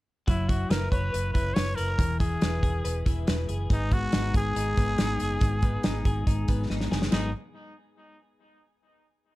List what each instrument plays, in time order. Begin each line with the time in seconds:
0.27 fingered electric bass F#1, clean electric guitar F#3, trumpet E4, kick, closed hi-hat
0.49 clean electric guitar E4, trumpet F#4, kick, closed hi-hat
0.70 fingered electric bass F#1, trumpet A#4, clean electric guitar B4, snare, closed hi-hat
0.91 fingered electric bass F#1, trumpet B4, clean electric guitar C#5, kick, closed hi-hat
1.13 fingered electric bass F#1, clean electric guitar B4, closed hi-hat
1.32 fingered electric bass F#1, clean electric guitar E4, trumpet B4, kick, closed hi-hat
1.54 fingered electric bass F#1, clean electric guitar B4, trumpet C#5, snare, closed hi-hat
1.75 fingered electric bass F#1, trumpet A#4, clean electric guitar B4, closed hi-hat
1.88 clean electric guitar C#5
1.98 fingered electric bass E1, clean electric guitar E3, kick, closed hi-hat
2.20 clean electric guitar E4, trumpet G#4, kick, closed hi-hat
2.41 fingered electric bass E1, clean electric guitar B4, snare, closed hi-hat
2.63 fingered electric bass E1, clean electric guitar G#4, kick, closed hi-hat
2.85 fingered electric bass E1, clean electric guitar B4, closed hi-hat
3.06 fingered electric bass E1, clean electric guitar E4, kick, closed hi-hat
3.27 fingered electric bass E1, clean electric guitar B4, snare, closed hi-hat
3.49 fingered electric bass F#1, clean electric guitar G#4, closed hi-hat
3.70 fingered electric bass G#1, clean electric guitar G#2, trumpet D#4, kick, closed hi-hat
3.91 clean electric guitar B3, trumpet F#4, kick, closed hi-hat
4.12 fingered electric bass G#1, clean electric guitar D#4, snare, closed hi-hat
4.34 fingered electric bass G#1, clean electric guitar G#4, trumpet G#4, kick, closed hi-hat
4.56 fingered electric bass G#1, clean electric guitar D#4, closed hi-hat
4.77 fingered electric bass G#1, clean electric guitar B3, kick, closed hi-hat
4.98 fingered electric bass G#1, clean electric guitar D#4, snare, closed hi-hat
5.20 fingered electric bass F#1, clean electric guitar G#4, closed hi-hat
5.41 fingered electric bass G#1, clean electric guitar G#2, kick, closed hi-hat
5.62 clean electric guitar B3, kick, closed hi-hat
5.83 fingered electric bass G#1, clean electric guitar D#4, snare, closed hi-hat
6.05 fingered electric bass G#1, clean electric guitar G#4, kick, closed hi-hat
6.27 fingered electric bass G#1, clean electric guitar D#4, kick, closed hi-hat
6.48 fingered electric bass G#1, clean electric guitar B3, kick, closed hi-hat
6.70 fingered electric bass G#1, clean electric guitar D#4, snare
6.81 snare
6.91 fingered electric bass F#1, clean electric guitar G#4, snare
7.02 snare
7.11 fingered electric bass G#1, clean electric guitar G#2 F#3 G#3 B3 D#4 G#4, trumpet D#4, snare, crash